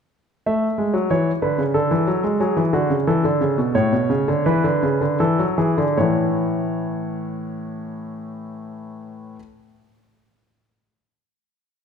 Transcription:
0.46 A3 E5
0.78 G#3
0.93 F#3
1.10 E3 C#5
1.42 D3 B4
1.58 C#3
1.74 D3 A4
1.91 E3
2.07 F#3
2.24 G#3
2.40 F#3 G#4
2.57 E3
2.73 D3 F#4
2.90 C#3
3.07 E3 A4
3.24 D3
3.41 C#3
3.58 B2
3.75 A2 C#5
3.93 B2
4.10 C#3
4.28 D3
4.46 E3 B4
4.64 D3
4.83 C#3
5.01 D3
5.20 E3 A4
5.39 F#3
5.58 E3 G#4
5.78 D3
5.97 A2 E3 A3 C#5

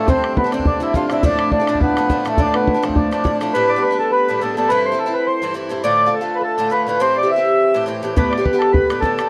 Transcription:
Already playing: A3 B3 D4 E4
0.07 G2 D3 C4 D4, bodhran
0.21 C4, bodhran
0.35 B3 B4, bodhran
0.44 D3 C4 D4
0.51 G2 D3 C4 D4, bodhran
0.59 D4, bodhran
0.64 D4, bodhran
0.80 G2 D3 C4 D4 E4
0.93 G2 D3 C4 D4 F4, bodhran
1.08 G2 D3 C4 E4 F4, bodhran
1.12 D4
1.22 A2 F3 A3 D4, bodhran
1.39 E4, bodhran
1.51 D4, bodhran
1.60 F3 A3 D4
1.67 A2 F3 A3 D4, bodhran
1.75 bodhran
1.79 B3 B4, bodhran
1.97 A2 F3 A3 D4, bodhran
2.10 A2 F3 A3 D4, bodhran
2.25 A2 F3 A3 D4, bodhran
2.37 A2 F3 A3 D4, bodhran
2.54 B3 B4, bodhran
2.67 B3, bodhran
2.74 F3 A3 D4
2.83 A2 F3 A3 C4 D4, bodhran
2.89 bodhran
2.96 D4, bodhran
3.11 A2 F3 A3 D4, bodhran
3.24 A2 F3 A3 D4, bodhran
3.41 A2 F3 A3 D4, bodhran
3.52 A2 G3 B3 D4 B4
3.69 D5
3.76 G3 B3 D4
3.82 B4
3.91 G3 B3 D4
3.98 A4
4.11 B4
4.28 A2 G3 B3 D4
4.38 A2 A4
4.42 G3 B3 D4 A4
4.54 A2 G3 B3 A4
4.59 D4
4.69 G2 E3 C4 E4 B4
4.85 C5
4.92 E3 C4 E4
4.98 A4
5.06 E3 C4 E4
5.13 B4
5.27 C5
5.42 G2 E3 C4 E4 C5
5.54 G2 E3 C4 E4
5.69 G2 E3 C4 E4
5.83 A2 D3 A3 F4 D5
6.06 D3 A3 F4
6.12 A4
6.21 D3 A3 F4
6.35 B4
6.41 A4
6.58 A2 D3 A3 F4
6.70 A2 D3 A3 F4 B4
6.86 A2 D3 A3 F4 B4
6.99 A2 E3 C4 G4 C5
7.15 D5
7.23 E3 C4 G4 E5
7.28 E5
7.36 E3 C4 G4
7.74 A2 E3 C4 G4
7.86 A2 E3 C4 G4
8.03 A2 E3 C4 G4
8.12 B4 C5
8.16 A2 D3 B3 G4 B4, bodhran
8.30 D5, bodhran
8.38 D3 B3 G4 C5
8.44 B4, bodhran
8.53 D3 B3 G4
8.59 A4, bodhran
8.72 B4, bodhran
8.90 A2 D3 B3 G4, bodhran
9.00 A2 D3 B3 A4, bodhran
9.05 G4
9.18 A2 D3 B3 G4, bodhran

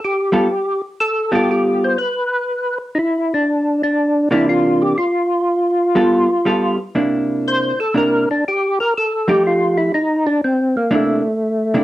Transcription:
0.05 G4
0.32 G3 B3 F4 A4
1.00 A4
1.32 G3 B3 F4 G4 A4
1.51 G4
1.84 C5
1.98 B4
2.95 D#4 E4
3.34 D4
3.83 D4
4.31 C3 E3 A#3 D4 E4
4.49 F4
4.82 G4
4.98 F4
5.95 G3 B3 F4 A4
6.45 G3 B3 F4 A4
6.95 C3 A#3 D4 E4
7.48 C5
7.80 A4
7.94 C3 A#3 D4 E4 A#4
8.31 D4
8.48 G4
8.80 A#4
8.98 A4
9.28 F3 A3 D#4 G4
9.47 F4
9.78 E4
9.94 D#4
10.27 D4
10.44 C4
10.77 A#3
10.91 C3 A#3 D4 E4
10.95 A3
11.74 C3 A#3 D4 E4

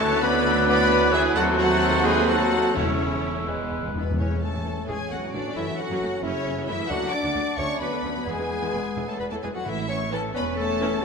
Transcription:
Already playing: E4
0.00 D2 F#3 A3 B3 D4 A4 B4 C#5 A5 F#6
0.21 B3 B4 D5 B5
0.66 B3 B4 D5 B5
1.12 E3 E4 G#4 E5
1.34 D#2 F#3 A3 C4 F#4 A4 C5 F#5
1.58 F#3 F#4 A4 F#5
2.04 G#3 G#4 B4 G#5
2.27 F#3 F#4 A4 F#5
2.74 E1 E2 C#3 A3 C#4 E4 C#5 E6
3.48 E2 G#3 B3 B4
3.56 E2
3.64 E2
3.71 E2
3.79 E2
3.88 E2
3.95 E2 B2 B3 D4 B4
4.03 E2
4.11 E2
4.18 A1 A2 C#3 E3 C#4 E4 C#5
4.31 A2 E3 A3
4.42 A3 A4 C#5 A5
4.54 A2 C#3 E3
4.65 A1 A2 E3 A3
4.88 A1 A2 C#3 E3 G#3 G#4 B4 G#5
5.10 A1 A2 F#3 A3 C#4 F#4 A4 F#5
5.22 A2 C#3 E3
5.33 A1 A2 D3 E3 A3 D4 F#4 D5
5.45 A2 A3 C#4
5.56 F#1 F#2 E3 F#3 E4 A4 E5
5.68 F#2 F#3 A3
5.78 F#3 F#4 A4 F#5
5.90 F#2 E3 F#3
6.01 F#1 F#2 F#3 A3
6.22 F#1 F#2 C#3 E3 F#3 C#4 E4 C#5
6.45 F#1 F#2 A3 C#4
6.57 F#2 E3 F#3
6.67 F#1 F#2 E3 F#3 A3 E4 G#4 E5
6.79 F#2 A3 C#4
6.88 D2 D3 F#3 D4 F#4 B4 F#5
7.01 D2 D3 F#3
7.11 D4 D5 F#5 D6
7.24 D2 D3
7.35 D2 D3 F#3
7.57 D2 D3 C#4 C#5 E5 C#6
7.79 D2 F#3 B3 B4 D5 B5
7.92 D2 D3
8.03 D2 D3 F#3
8.15 D2 F#3 B3
8.25 E1 E2 E3 G#3 B3 G#4 B4 G#5
8.38 E2 E3 G#3
8.61 E2 E3
8.73 E1 E2 E3 G#3
8.96 E1 E2 E3
9.06 A3 A4 C#5 A5
9.18 E1 E2 E3 B3 B4 D5 B5
9.29 E2 E3 A3 A4 C#5 A5
9.42 E1 E2 E3 G#3 G#4 B4 G#5
9.54 E2 E3 F#3 B3 F#4 A4 F#5
9.64 A1 A2 E3 E4 A4 E5
9.87 C#4 C#5 E5 C#6
10.10 E3 A3 C#4 A4 C#5 A5
10.33 E1 E2 B3 C#4 B4 D5 B5
10.57 A3 A4 C#5 A5
10.80 E3 C#4

